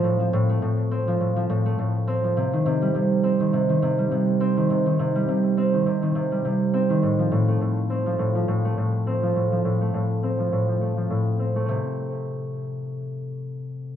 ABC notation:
X:1
M:4/4
L:1/16
Q:"Swing 16ths" 1/4=103
K:Fmix
V:1 name="Harp" clef=bass
A,, F, A,, A, A,,2 C F, A,, F, A,, A, A,,2 C F, | C, E, C, G, C,2 C E, C, E, C, G, C,2 C E, | C, E, C, G, C,2 C E, C, E, C, G, C,2 C E, | A,, F, A,, A, A,,2 C F, A,, F, A,, A, A,,2 C F, |
A,, F, A,, A, A,,2 C F, A,, F, A, F, A,, z C A, | C,2 z12 z2 |]